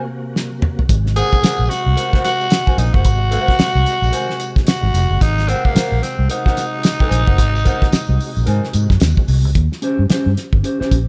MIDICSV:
0, 0, Header, 1, 7, 480
1, 0, Start_track
1, 0, Tempo, 541516
1, 791, Time_signature, 4, 2, 24, 8
1, 9822, End_track
2, 0, Start_track
2, 0, Title_t, "Clean electric guitar"
2, 0, Program_c, 0, 27
2, 1028, Note_on_c, 0, 70, 81
2, 1035, Note_on_c, 0, 72, 83
2, 1043, Note_on_c, 0, 78, 92
2, 1194, Note_off_c, 0, 70, 0
2, 1198, Note_off_c, 0, 72, 0
2, 1202, Note_off_c, 0, 78, 0
2, 1264, Note_on_c, 0, 70, 84
2, 1272, Note_on_c, 0, 72, 80
2, 1280, Note_on_c, 0, 78, 91
2, 1432, Note_off_c, 0, 70, 0
2, 1436, Note_off_c, 0, 72, 0
2, 1440, Note_off_c, 0, 78, 0
2, 1742, Note_on_c, 0, 70, 75
2, 1753, Note_on_c, 0, 72, 65
2, 1760, Note_on_c, 0, 78, 72
2, 1876, Note_off_c, 0, 78, 0
2, 1883, Note_off_c, 0, 70, 0
2, 1886, Note_off_c, 0, 72, 0
2, 1887, Note_on_c, 0, 78, 83
2, 1897, Note_on_c, 0, 72, 87
2, 1905, Note_on_c, 0, 70, 75
2, 2018, Note_off_c, 0, 78, 0
2, 2023, Note_off_c, 0, 72, 0
2, 2027, Note_off_c, 0, 70, 0
2, 2364, Note_on_c, 0, 80, 82
2, 2374, Note_on_c, 0, 72, 65
2, 2380, Note_on_c, 0, 70, 68
2, 2496, Note_off_c, 0, 80, 0
2, 2501, Note_off_c, 0, 72, 0
2, 2504, Note_off_c, 0, 70, 0
2, 2610, Note_on_c, 0, 78, 75
2, 2617, Note_on_c, 0, 72, 57
2, 2625, Note_on_c, 0, 70, 48
2, 2702, Note_off_c, 0, 78, 0
2, 2705, Note_off_c, 0, 72, 0
2, 2709, Note_off_c, 0, 70, 0
2, 2936, Note_on_c, 0, 70, 90
2, 2945, Note_on_c, 0, 72, 88
2, 2952, Note_on_c, 0, 78, 97
2, 3130, Note_off_c, 0, 70, 0
2, 3135, Note_off_c, 0, 72, 0
2, 3138, Note_off_c, 0, 78, 0
2, 3654, Note_on_c, 0, 70, 74
2, 3664, Note_on_c, 0, 72, 87
2, 3669, Note_on_c, 0, 80, 78
2, 3824, Note_off_c, 0, 70, 0
2, 3830, Note_off_c, 0, 72, 0
2, 3832, Note_off_c, 0, 80, 0
2, 4858, Note_on_c, 0, 70, 93
2, 4868, Note_on_c, 0, 72, 86
2, 4873, Note_on_c, 0, 78, 99
2, 5027, Note_off_c, 0, 70, 0
2, 5032, Note_off_c, 0, 72, 0
2, 5034, Note_off_c, 0, 78, 0
2, 5099, Note_on_c, 0, 70, 98
2, 5107, Note_on_c, 0, 72, 83
2, 5113, Note_on_c, 0, 78, 78
2, 5267, Note_off_c, 0, 70, 0
2, 5271, Note_off_c, 0, 72, 0
2, 5274, Note_off_c, 0, 78, 0
2, 5579, Note_on_c, 0, 70, 59
2, 5588, Note_on_c, 0, 72, 61
2, 5595, Note_on_c, 0, 78, 72
2, 5712, Note_off_c, 0, 78, 0
2, 5719, Note_off_c, 0, 70, 0
2, 5722, Note_off_c, 0, 72, 0
2, 5722, Note_on_c, 0, 78, 93
2, 5733, Note_on_c, 0, 72, 83
2, 5738, Note_on_c, 0, 70, 76
2, 5854, Note_off_c, 0, 78, 0
2, 5859, Note_off_c, 0, 72, 0
2, 5862, Note_off_c, 0, 70, 0
2, 6208, Note_on_c, 0, 80, 83
2, 6217, Note_on_c, 0, 72, 75
2, 6223, Note_on_c, 0, 70, 74
2, 6373, Note_off_c, 0, 80, 0
2, 6377, Note_off_c, 0, 72, 0
2, 6380, Note_off_c, 0, 70, 0
2, 6448, Note_on_c, 0, 78, 69
2, 6458, Note_on_c, 0, 72, 59
2, 6462, Note_on_c, 0, 70, 55
2, 6540, Note_off_c, 0, 78, 0
2, 6545, Note_off_c, 0, 72, 0
2, 6547, Note_off_c, 0, 70, 0
2, 6781, Note_on_c, 0, 70, 94
2, 6790, Note_on_c, 0, 72, 98
2, 6796, Note_on_c, 0, 78, 92
2, 6949, Note_off_c, 0, 70, 0
2, 6953, Note_off_c, 0, 72, 0
2, 6957, Note_off_c, 0, 78, 0
2, 7500, Note_on_c, 0, 70, 82
2, 7508, Note_on_c, 0, 72, 82
2, 7514, Note_on_c, 0, 80, 85
2, 7669, Note_off_c, 0, 70, 0
2, 7674, Note_off_c, 0, 72, 0
2, 7676, Note_off_c, 0, 80, 0
2, 8704, Note_on_c, 0, 61, 89
2, 8712, Note_on_c, 0, 67, 84
2, 8718, Note_on_c, 0, 72, 93
2, 8873, Note_off_c, 0, 61, 0
2, 8877, Note_off_c, 0, 67, 0
2, 8881, Note_off_c, 0, 72, 0
2, 8947, Note_on_c, 0, 61, 86
2, 8952, Note_on_c, 0, 67, 84
2, 8960, Note_on_c, 0, 72, 86
2, 9115, Note_off_c, 0, 61, 0
2, 9118, Note_off_c, 0, 67, 0
2, 9122, Note_off_c, 0, 72, 0
2, 9425, Note_on_c, 0, 61, 63
2, 9435, Note_on_c, 0, 67, 60
2, 9441, Note_on_c, 0, 72, 70
2, 9564, Note_off_c, 0, 72, 0
2, 9568, Note_off_c, 0, 61, 0
2, 9573, Note_off_c, 0, 67, 0
2, 9574, Note_on_c, 0, 72, 82
2, 9582, Note_on_c, 0, 67, 80
2, 9589, Note_on_c, 0, 61, 71
2, 9705, Note_off_c, 0, 72, 0
2, 9709, Note_off_c, 0, 67, 0
2, 9713, Note_off_c, 0, 61, 0
2, 9822, End_track
3, 0, Start_track
3, 0, Title_t, "Tenor saxophone"
3, 0, Program_c, 1, 66
3, 1030, Note_on_c, 1, 68, 122
3, 1506, Note_on_c, 1, 66, 98
3, 1519, Note_off_c, 1, 68, 0
3, 1986, Note_off_c, 1, 66, 0
3, 1989, Note_on_c, 1, 66, 109
3, 2468, Note_on_c, 1, 63, 89
3, 2482, Note_off_c, 1, 66, 0
3, 2605, Note_on_c, 1, 66, 114
3, 2619, Note_off_c, 1, 63, 0
3, 4045, Note_off_c, 1, 66, 0
3, 4147, Note_on_c, 1, 66, 95
3, 4623, Note_on_c, 1, 63, 112
3, 4636, Note_off_c, 1, 66, 0
3, 4862, Note_on_c, 1, 60, 100
3, 4875, Note_off_c, 1, 63, 0
3, 5009, Note_on_c, 1, 58, 101
3, 5023, Note_off_c, 1, 60, 0
3, 5344, Note_on_c, 1, 60, 85
3, 5357, Note_off_c, 1, 58, 0
3, 5584, Note_off_c, 1, 60, 0
3, 5588, Note_on_c, 1, 63, 109
3, 7954, Note_off_c, 1, 63, 0
3, 9822, End_track
4, 0, Start_track
4, 0, Title_t, "Tonewheel organ"
4, 0, Program_c, 2, 16
4, 0, Note_on_c, 2, 48, 67
4, 0, Note_on_c, 2, 58, 65
4, 0, Note_on_c, 2, 66, 83
4, 756, Note_off_c, 2, 58, 0
4, 790, Note_on_c, 2, 56, 67
4, 8433, Note_off_c, 2, 48, 0
4, 8433, Note_off_c, 2, 56, 0
4, 8434, Note_off_c, 2, 66, 0
4, 9822, End_track
5, 0, Start_track
5, 0, Title_t, "Fingered electric bass"
5, 0, Program_c, 3, 33
5, 791, Note_on_c, 3, 32, 118
5, 1067, Note_off_c, 3, 32, 0
5, 1411, Note_on_c, 3, 34, 88
5, 1481, Note_off_c, 3, 34, 0
5, 1651, Note_on_c, 3, 36, 85
5, 1721, Note_off_c, 3, 36, 0
5, 2462, Note_on_c, 3, 34, 111
5, 2567, Note_off_c, 3, 34, 0
5, 2605, Note_on_c, 3, 30, 83
5, 2702, Note_off_c, 3, 30, 0
5, 2702, Note_on_c, 3, 32, 124
5, 2980, Note_off_c, 3, 32, 0
5, 3326, Note_on_c, 3, 36, 91
5, 3396, Note_off_c, 3, 36, 0
5, 3564, Note_on_c, 3, 34, 91
5, 3634, Note_off_c, 3, 34, 0
5, 4282, Note_on_c, 3, 32, 85
5, 4353, Note_off_c, 3, 32, 0
5, 4379, Note_on_c, 3, 29, 96
5, 4485, Note_off_c, 3, 29, 0
5, 4524, Note_on_c, 3, 30, 87
5, 4595, Note_off_c, 3, 30, 0
5, 4621, Note_on_c, 3, 32, 114
5, 4899, Note_off_c, 3, 32, 0
5, 5247, Note_on_c, 3, 34, 90
5, 5316, Note_off_c, 3, 34, 0
5, 5485, Note_on_c, 3, 36, 93
5, 5555, Note_off_c, 3, 36, 0
5, 6304, Note_on_c, 3, 34, 113
5, 6408, Note_off_c, 3, 34, 0
5, 6447, Note_on_c, 3, 30, 80
5, 6544, Note_off_c, 3, 30, 0
5, 6544, Note_on_c, 3, 32, 106
5, 6822, Note_off_c, 3, 32, 0
5, 7171, Note_on_c, 3, 36, 94
5, 7240, Note_off_c, 3, 36, 0
5, 7417, Note_on_c, 3, 34, 81
5, 7484, Note_off_c, 3, 34, 0
5, 7512, Note_on_c, 3, 44, 108
5, 7614, Note_off_c, 3, 44, 0
5, 7750, Note_on_c, 3, 44, 99
5, 7853, Note_off_c, 3, 44, 0
5, 7889, Note_on_c, 3, 42, 78
5, 7959, Note_off_c, 3, 42, 0
5, 7989, Note_on_c, 3, 39, 80
5, 8092, Note_off_c, 3, 39, 0
5, 8227, Note_on_c, 3, 36, 109
5, 8372, Note_off_c, 3, 36, 0
5, 8372, Note_on_c, 3, 37, 83
5, 8442, Note_off_c, 3, 37, 0
5, 8467, Note_on_c, 3, 39, 118
5, 8572, Note_off_c, 3, 39, 0
5, 8855, Note_on_c, 3, 43, 84
5, 8924, Note_off_c, 3, 43, 0
5, 9096, Note_on_c, 3, 43, 92
5, 9165, Note_off_c, 3, 43, 0
5, 9330, Note_on_c, 3, 31, 75
5, 9402, Note_off_c, 3, 31, 0
5, 9675, Note_on_c, 3, 34, 92
5, 9822, Note_off_c, 3, 34, 0
5, 9822, End_track
6, 0, Start_track
6, 0, Title_t, "Muted fingered electric bass strokes"
6, 1267, Note_on_c, 9, 29, 44
6, 1355, Note_off_c, 9, 29, 0
6, 3182, Note_on_c, 9, 29, 46
6, 3270, Note_off_c, 9, 29, 0
6, 5100, Note_on_c, 9, 29, 50
6, 5189, Note_off_c, 9, 29, 0
6, 7025, Note_on_c, 9, 29, 47
6, 7114, Note_off_c, 9, 29, 0
6, 8950, Note_on_c, 9, 29, 47
6, 9039, Note_off_c, 9, 29, 0
6, 9579, Note_on_c, 9, 29, 50
6, 9668, Note_off_c, 9, 29, 0
6, 9822, End_track
7, 0, Start_track
7, 0, Title_t, "Drums"
7, 320, Note_on_c, 9, 38, 60
7, 409, Note_off_c, 9, 38, 0
7, 552, Note_on_c, 9, 45, 93
7, 640, Note_off_c, 9, 45, 0
7, 699, Note_on_c, 9, 43, 88
7, 787, Note_off_c, 9, 43, 0
7, 788, Note_on_c, 9, 54, 53
7, 792, Note_on_c, 9, 36, 122
7, 792, Note_on_c, 9, 42, 107
7, 877, Note_off_c, 9, 54, 0
7, 880, Note_off_c, 9, 36, 0
7, 881, Note_off_c, 9, 42, 0
7, 942, Note_on_c, 9, 38, 36
7, 1030, Note_off_c, 9, 38, 0
7, 1030, Note_on_c, 9, 42, 70
7, 1033, Note_on_c, 9, 54, 48
7, 1118, Note_off_c, 9, 42, 0
7, 1122, Note_off_c, 9, 54, 0
7, 1177, Note_on_c, 9, 36, 84
7, 1265, Note_off_c, 9, 36, 0
7, 1273, Note_on_c, 9, 42, 94
7, 1275, Note_on_c, 9, 54, 91
7, 1280, Note_on_c, 9, 38, 127
7, 1362, Note_off_c, 9, 42, 0
7, 1363, Note_off_c, 9, 54, 0
7, 1368, Note_off_c, 9, 38, 0
7, 1512, Note_on_c, 9, 54, 58
7, 1515, Note_on_c, 9, 42, 63
7, 1518, Note_on_c, 9, 38, 34
7, 1601, Note_off_c, 9, 54, 0
7, 1604, Note_off_c, 9, 42, 0
7, 1607, Note_off_c, 9, 38, 0
7, 1749, Note_on_c, 9, 42, 92
7, 1752, Note_on_c, 9, 54, 48
7, 1838, Note_off_c, 9, 42, 0
7, 1841, Note_off_c, 9, 54, 0
7, 1890, Note_on_c, 9, 36, 87
7, 1898, Note_on_c, 9, 38, 32
7, 1979, Note_off_c, 9, 36, 0
7, 1986, Note_off_c, 9, 38, 0
7, 1990, Note_on_c, 9, 42, 79
7, 1995, Note_on_c, 9, 38, 38
7, 1997, Note_on_c, 9, 54, 59
7, 2079, Note_off_c, 9, 42, 0
7, 2084, Note_off_c, 9, 38, 0
7, 2086, Note_off_c, 9, 54, 0
7, 2135, Note_on_c, 9, 54, 35
7, 2219, Note_on_c, 9, 42, 86
7, 2223, Note_off_c, 9, 54, 0
7, 2229, Note_on_c, 9, 54, 89
7, 2232, Note_on_c, 9, 38, 121
7, 2308, Note_off_c, 9, 42, 0
7, 2317, Note_off_c, 9, 54, 0
7, 2321, Note_off_c, 9, 38, 0
7, 2369, Note_on_c, 9, 36, 101
7, 2458, Note_off_c, 9, 36, 0
7, 2467, Note_on_c, 9, 42, 84
7, 2467, Note_on_c, 9, 54, 55
7, 2555, Note_off_c, 9, 42, 0
7, 2555, Note_off_c, 9, 54, 0
7, 2607, Note_on_c, 9, 36, 96
7, 2696, Note_off_c, 9, 36, 0
7, 2700, Note_on_c, 9, 42, 96
7, 2703, Note_on_c, 9, 36, 105
7, 2709, Note_on_c, 9, 54, 49
7, 2789, Note_off_c, 9, 42, 0
7, 2792, Note_off_c, 9, 36, 0
7, 2798, Note_off_c, 9, 54, 0
7, 2941, Note_on_c, 9, 42, 73
7, 2949, Note_on_c, 9, 54, 52
7, 3030, Note_off_c, 9, 42, 0
7, 3038, Note_off_c, 9, 54, 0
7, 3088, Note_on_c, 9, 36, 76
7, 3092, Note_on_c, 9, 38, 28
7, 3177, Note_off_c, 9, 36, 0
7, 3180, Note_off_c, 9, 38, 0
7, 3181, Note_on_c, 9, 42, 87
7, 3187, Note_on_c, 9, 54, 87
7, 3188, Note_on_c, 9, 38, 116
7, 3270, Note_off_c, 9, 42, 0
7, 3275, Note_off_c, 9, 54, 0
7, 3276, Note_off_c, 9, 38, 0
7, 3423, Note_on_c, 9, 42, 62
7, 3429, Note_on_c, 9, 54, 63
7, 3512, Note_off_c, 9, 42, 0
7, 3518, Note_off_c, 9, 54, 0
7, 3575, Note_on_c, 9, 54, 40
7, 3659, Note_on_c, 9, 42, 91
7, 3664, Note_off_c, 9, 54, 0
7, 3670, Note_on_c, 9, 54, 56
7, 3748, Note_off_c, 9, 42, 0
7, 3759, Note_off_c, 9, 54, 0
7, 3812, Note_on_c, 9, 38, 32
7, 3898, Note_on_c, 9, 42, 83
7, 3900, Note_off_c, 9, 38, 0
7, 3908, Note_on_c, 9, 54, 61
7, 3986, Note_off_c, 9, 42, 0
7, 3997, Note_off_c, 9, 54, 0
7, 4044, Note_on_c, 9, 36, 92
7, 4051, Note_on_c, 9, 38, 32
7, 4133, Note_off_c, 9, 36, 0
7, 4136, Note_on_c, 9, 42, 100
7, 4139, Note_off_c, 9, 38, 0
7, 4142, Note_on_c, 9, 54, 91
7, 4150, Note_on_c, 9, 38, 112
7, 4225, Note_off_c, 9, 42, 0
7, 4231, Note_off_c, 9, 54, 0
7, 4238, Note_off_c, 9, 38, 0
7, 4380, Note_on_c, 9, 54, 58
7, 4385, Note_on_c, 9, 42, 85
7, 4468, Note_off_c, 9, 54, 0
7, 4474, Note_off_c, 9, 42, 0
7, 4620, Note_on_c, 9, 42, 103
7, 4621, Note_on_c, 9, 36, 107
7, 4624, Note_on_c, 9, 54, 55
7, 4709, Note_off_c, 9, 42, 0
7, 4710, Note_off_c, 9, 36, 0
7, 4712, Note_off_c, 9, 54, 0
7, 4770, Note_on_c, 9, 54, 38
7, 4774, Note_on_c, 9, 38, 35
7, 4858, Note_off_c, 9, 54, 0
7, 4862, Note_on_c, 9, 42, 79
7, 4863, Note_off_c, 9, 38, 0
7, 4867, Note_on_c, 9, 54, 51
7, 4951, Note_off_c, 9, 42, 0
7, 4956, Note_off_c, 9, 54, 0
7, 5008, Note_on_c, 9, 36, 81
7, 5097, Note_off_c, 9, 36, 0
7, 5103, Note_on_c, 9, 42, 94
7, 5107, Note_on_c, 9, 54, 99
7, 5109, Note_on_c, 9, 38, 114
7, 5191, Note_off_c, 9, 42, 0
7, 5196, Note_off_c, 9, 54, 0
7, 5198, Note_off_c, 9, 38, 0
7, 5346, Note_on_c, 9, 42, 62
7, 5350, Note_on_c, 9, 38, 36
7, 5353, Note_on_c, 9, 54, 56
7, 5435, Note_off_c, 9, 42, 0
7, 5438, Note_off_c, 9, 38, 0
7, 5442, Note_off_c, 9, 54, 0
7, 5581, Note_on_c, 9, 42, 91
7, 5591, Note_on_c, 9, 54, 50
7, 5669, Note_off_c, 9, 42, 0
7, 5679, Note_off_c, 9, 54, 0
7, 5726, Note_on_c, 9, 36, 91
7, 5736, Note_on_c, 9, 38, 29
7, 5814, Note_off_c, 9, 36, 0
7, 5824, Note_off_c, 9, 38, 0
7, 5824, Note_on_c, 9, 42, 84
7, 5828, Note_on_c, 9, 38, 41
7, 5831, Note_on_c, 9, 54, 68
7, 5912, Note_off_c, 9, 42, 0
7, 5917, Note_off_c, 9, 38, 0
7, 5920, Note_off_c, 9, 54, 0
7, 6057, Note_on_c, 9, 42, 96
7, 6064, Note_on_c, 9, 54, 92
7, 6070, Note_on_c, 9, 38, 121
7, 6146, Note_off_c, 9, 42, 0
7, 6153, Note_off_c, 9, 54, 0
7, 6159, Note_off_c, 9, 38, 0
7, 6208, Note_on_c, 9, 36, 97
7, 6296, Note_off_c, 9, 36, 0
7, 6304, Note_on_c, 9, 54, 64
7, 6312, Note_on_c, 9, 42, 89
7, 6393, Note_off_c, 9, 54, 0
7, 6400, Note_off_c, 9, 42, 0
7, 6448, Note_on_c, 9, 36, 98
7, 6537, Note_off_c, 9, 36, 0
7, 6545, Note_on_c, 9, 36, 110
7, 6547, Note_on_c, 9, 42, 100
7, 6550, Note_on_c, 9, 54, 60
7, 6634, Note_off_c, 9, 36, 0
7, 6635, Note_off_c, 9, 42, 0
7, 6638, Note_off_c, 9, 54, 0
7, 6695, Note_on_c, 9, 54, 37
7, 6784, Note_off_c, 9, 54, 0
7, 6786, Note_on_c, 9, 42, 77
7, 6788, Note_on_c, 9, 36, 89
7, 6794, Note_on_c, 9, 54, 53
7, 6874, Note_off_c, 9, 42, 0
7, 6877, Note_off_c, 9, 36, 0
7, 6882, Note_off_c, 9, 54, 0
7, 6931, Note_on_c, 9, 36, 91
7, 6937, Note_on_c, 9, 38, 35
7, 7020, Note_off_c, 9, 36, 0
7, 7024, Note_on_c, 9, 42, 86
7, 7025, Note_off_c, 9, 38, 0
7, 7031, Note_on_c, 9, 38, 127
7, 7031, Note_on_c, 9, 54, 99
7, 7113, Note_off_c, 9, 42, 0
7, 7120, Note_off_c, 9, 38, 0
7, 7120, Note_off_c, 9, 54, 0
7, 7271, Note_on_c, 9, 46, 45
7, 7272, Note_on_c, 9, 54, 60
7, 7360, Note_off_c, 9, 46, 0
7, 7360, Note_off_c, 9, 54, 0
7, 7415, Note_on_c, 9, 54, 42
7, 7503, Note_off_c, 9, 54, 0
7, 7506, Note_on_c, 9, 42, 84
7, 7514, Note_on_c, 9, 54, 53
7, 7594, Note_off_c, 9, 42, 0
7, 7602, Note_off_c, 9, 54, 0
7, 7656, Note_on_c, 9, 38, 29
7, 7743, Note_on_c, 9, 42, 80
7, 7744, Note_off_c, 9, 38, 0
7, 7752, Note_on_c, 9, 54, 64
7, 7831, Note_off_c, 9, 42, 0
7, 7840, Note_off_c, 9, 54, 0
7, 7889, Note_on_c, 9, 36, 89
7, 7894, Note_on_c, 9, 38, 34
7, 7978, Note_off_c, 9, 36, 0
7, 7978, Note_on_c, 9, 42, 87
7, 7982, Note_off_c, 9, 38, 0
7, 7988, Note_on_c, 9, 54, 92
7, 7992, Note_on_c, 9, 38, 116
7, 8067, Note_off_c, 9, 42, 0
7, 8077, Note_off_c, 9, 54, 0
7, 8080, Note_off_c, 9, 38, 0
7, 8131, Note_on_c, 9, 36, 102
7, 8220, Note_off_c, 9, 36, 0
7, 8225, Note_on_c, 9, 54, 57
7, 8230, Note_on_c, 9, 46, 88
7, 8314, Note_off_c, 9, 54, 0
7, 8318, Note_off_c, 9, 46, 0
7, 8374, Note_on_c, 9, 54, 39
7, 8462, Note_off_c, 9, 54, 0
7, 8468, Note_on_c, 9, 36, 104
7, 8468, Note_on_c, 9, 42, 94
7, 8556, Note_off_c, 9, 36, 0
7, 8557, Note_off_c, 9, 42, 0
7, 8618, Note_on_c, 9, 38, 35
7, 8706, Note_off_c, 9, 38, 0
7, 8706, Note_on_c, 9, 42, 75
7, 8795, Note_off_c, 9, 42, 0
7, 8949, Note_on_c, 9, 42, 79
7, 8956, Note_on_c, 9, 38, 102
7, 9038, Note_off_c, 9, 42, 0
7, 9044, Note_off_c, 9, 38, 0
7, 9195, Note_on_c, 9, 42, 64
7, 9198, Note_on_c, 9, 38, 34
7, 9284, Note_off_c, 9, 42, 0
7, 9287, Note_off_c, 9, 38, 0
7, 9331, Note_on_c, 9, 36, 89
7, 9420, Note_off_c, 9, 36, 0
7, 9433, Note_on_c, 9, 42, 86
7, 9521, Note_off_c, 9, 42, 0
7, 9586, Note_on_c, 9, 38, 28
7, 9674, Note_off_c, 9, 38, 0
7, 9675, Note_on_c, 9, 36, 81
7, 9676, Note_on_c, 9, 42, 82
7, 9763, Note_off_c, 9, 36, 0
7, 9764, Note_off_c, 9, 42, 0
7, 9822, End_track
0, 0, End_of_file